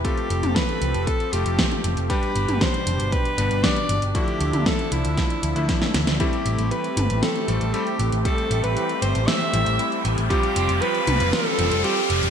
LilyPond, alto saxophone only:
\new Staff \with { instrumentName = "Alto saxophone" } { \time 4/4 \key a \minor \tempo 4 = 117 g'4 b'4 a'8 g'4 r8 | b'4 c''4 b'4 d''8. r16 | g'4 a'8 e'2 r8 | g'4 b'4 a'4 g'8. r16 |
a'8. b'8. c''8 e''4. r8 | g'4 b'4 a'4 g'8. r16 | }